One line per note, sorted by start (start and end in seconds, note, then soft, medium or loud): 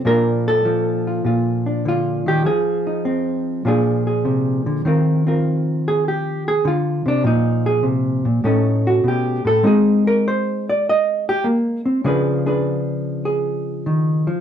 0.05 1.23 A#2 medium
0.05 0.65 F3 soft
0.05 1.65 D4 soft
0.05 1.07 F4 soft
0.05 0.47 A#4 loud
0.48 1.67 A4 loud
0.65 2.45 F3 medium
1.07 1.26 F4 soft
1.24 2.42 A#2 medium
1.24 1.85 F4 medium
1.66 2.42 D4 soft
1.85 2.26 D3 medium
1.85 2.46 F4 medium
2.26 2.45 D#3 medium
2.26 2.46 G4 medium
2.45 3.65 F3 medium
2.45 3.65 G#4 medium
2.87 3.63 D#4 soft
3.05 3.62 C4 medium
3.65 4.82 A#2 medium
3.65 7.23 F3 soft
3.65 4.83 D4 medium
3.65 4.83 F4 medium
3.65 4.06 G#4 medium
4.07 4.83 G#4 soft
4.25 4.66 C3 medium
4.66 4.85 D3 medium
4.85 6.64 D#3 medium
4.85 5.26 C4 soft
4.85 5.26 F4 soft
4.85 5.27 A#4 soft
5.27 7.22 C4 soft
5.27 6.65 F4 soft
5.27 5.87 A#4 soft
5.88 6.05 G#4 medium
6.08 6.47 G4 medium
6.48 6.65 G#4 medium
6.65 7.05 D3 medium
6.65 7.07 F4 medium
7.06 7.24 C3 medium
7.06 7.25 D4 medium
7.24 8.24 A#2 medium
7.24 8.44 F3 soft
7.24 7.67 D#4 medium
7.66 7.84 G#4 medium
7.83 8.25 C3 medium
8.25 8.43 A#2 medium
8.44 9.03 A2 medium
8.44 9.62 A3 soft
8.44 9.62 C#4 soft
8.44 8.86 D#4 soft
8.44 9.05 A4 soft
8.87 9.05 F#4 medium
9.04 9.44 B2 medium
9.08 9.47 G4 medium
9.45 9.64 A2 medium
9.45 9.65 A4 loud
9.63 12.09 G#3 medium
9.63 11.44 C4 soft
9.63 12.02 D#4 medium
9.63 10.07 G#4 medium
10.07 10.25 A#4 medium
10.28 10.67 C5 medium
10.69 10.86 D5 medium
10.89 11.28 D#5 loud
11.29 11.46 G4 medium
11.44 11.85 A#3 medium
11.86 12.04 C4 medium
12.04 14.40 C#3 medium
12.04 14.27 F3 medium
12.04 12.45 D4 medium
12.04 12.46 G#4 medium
12.04 12.47 B4 medium
12.46 14.40 D4 soft
12.46 13.25 G#4 medium
12.46 14.40 B4 medium
13.25 14.40 G#4 medium
13.86 14.27 D#3 medium
14.27 14.40 F3 medium